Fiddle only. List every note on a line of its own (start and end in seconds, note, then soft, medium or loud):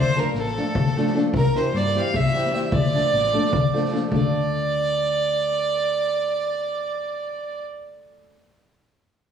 0.00 0.21 C5 loud
0.20 0.41 A#4 medium
0.40 1.17 A4 medium
1.37 1.59 A#4 loud
1.57 1.79 C5 medium
1.77 2.01 D5 medium
2.00 2.17 F5 medium
2.16 2.53 E5 loud
2.54 2.64 E5 medium
2.64 2.74 E5 medium
2.72 3.92 D5 medium
4.12 7.64 D5 medium